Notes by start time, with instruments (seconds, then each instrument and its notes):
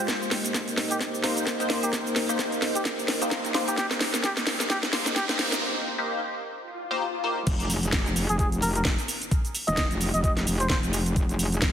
Already playing: ambient pad F4 C5 G5, analog synth pad G4
0.08 analog synth pad A#3 C5 D#5, ambient pad D#4, kick, snare, closed hi-hat, riser, shaker
0.22 ambient pad A#4, shaker
0.31 snare, open hi-hat
0.45 closed hi-hat, shaker
0.54 kick, snare, closed hi-hat, shaker
0.68 closed hi-hat, shaker
0.78 snare, open hi-hat
0.91 muted trumpet G4, closed hi-hat, shaker
1.01 kick, snare, closed hi-hat, shaker
1.15 shaker
1.24 synth stab A#3 D#4 G4 C5, snare, open hi-hat
1.37 closed hi-hat, shaker
1.47 kick, snare, closed hi-hat, shaker
1.60 synth stab A#3 D#4 G4 C5, closed hi-hat, shaker
1.70 snare, open hi-hat
1.83 muted trumpet G4, closed hi-hat, shaker
1.93 kick, snare, closed hi-hat, shaker
2.07 shaker
2.16 snare, open hi-hat
2.29 synth stab A#3 D#4 G4 C5, closed hi-hat, shaker
2.39 kick, snare, closed hi-hat, shaker
2.52 closed hi-hat, shaker
2.62 snare, open hi-hat
2.75 muted trumpet G4, closed hi-hat, shaker
2.85 kick, snare, closed hi-hat, shaker
2.99 shaker
3.08 snare, open hi-hat
3.22 synth stab A#3 D#4 G4 C5, closed hi-hat, shaker
3.31 kick, snare, closed hi-hat, shaker
3.45 closed hi-hat, shaker
3.54 synth stab A#3 D#4 G4 C5, snare, open hi-hat
3.68 synth stab A#3 D#4 G4 C5, muted trumpet G4, closed hi-hat, shaker
3.78 muted trumpet G4, kick, snare, closed hi-hat, shaker
3.91 snare, shaker
4.01 snare, open hi-hat
4.14 snare, closed hi-hat, shaker
4.24 muted trumpet G4, kick, snare, closed hi-hat, shaker
4.37 snare, closed hi-hat, shaker
4.47 snare, open hi-hat
4.60 snare, closed hi-hat, shaker
4.70 muted trumpet G4, kick, snare, closed hi-hat, shaker
4.83 snare, shaker
4.93 synth stab A#3 D#4 G4 C5, snare, open hi-hat
5.06 snare, closed hi-hat, shaker
5.16 muted trumpet G4, kick, snare, closed hi-hat, shaker
5.29 synth stab A#3 D#4 G4 C5, snare, closed hi-hat, shaker
5.39 snare, open hi-hat
5.52 snare, closed hi-hat, shaker
5.98 synth stab A#3 D#4 G4 C5
6.54 swell
6.91 synth stab A#3 D#4 G4 C5
7.24 synth stab A#3 D#4 G4 C5
7.47 wobble bass F1, kick, closed hi-hat, crash, impact, shaker
7.60 closed hi-hat, shaker
7.70 open hi-hat, shaker
7.83 closed hi-hat, shaker
7.93 wobble bass F1, kick, snare, closed hi-hat, shaker
8.06 closed hi-hat, shaker
8.16 open hi-hat, shaker
8.29 wobble bass F1, muted trumpet G#4, closed hi-hat, shaker
8.39 muted trumpet G#4, kick, closed hi-hat, shaker
8.52 closed hi-hat, shaker
8.62 wobble bass F1, muted trumpet A#4, open hi-hat, shaker
8.75 muted trumpet A#4, closed hi-hat, shaker
8.85 wobble bass F1, kick, snare, closed hi-hat, shaker
8.98 closed hi-hat, shaker
9.08 open hi-hat, shaker
9.22 closed hi-hat, shaker
9.31 kick, closed hi-hat, shaker
9.45 closed hi-hat, shaker
9.55 open hi-hat, shaker
9.68 wobble bass D#1, muted trumpet D#5, closed hi-hat, shaker
9.77 kick, snare, closed hi-hat, shaker
9.91 wobble bass F1, closed hi-hat, shaker
10.01 open hi-hat, shaker
10.14 wobble bass F1, muted trumpet D#5, closed hi-hat, shaker
10.24 muted trumpet D#5, kick, closed hi-hat, shaker
10.37 snare, closed hi-hat, shaker
10.47 wobble bass F1, open hi-hat, shaker
10.60 muted trumpet C5, closed hi-hat, shaker
10.70 wobble bass D#1, muted trumpet C5, kick, snare, closed hi-hat, shaker
10.83 wobble bass F1, closed hi-hat, shaker
10.93 open hi-hat, shaker
11.06 closed hi-hat, shaker
11.16 wobble bass F1, kick, closed hi-hat, shaker
11.29 closed hi-hat, shaker
11.39 open hi-hat, shaker
11.52 closed hi-hat, shaker
11.62 wobble bass F1, kick, snare, closed hi-hat, shaker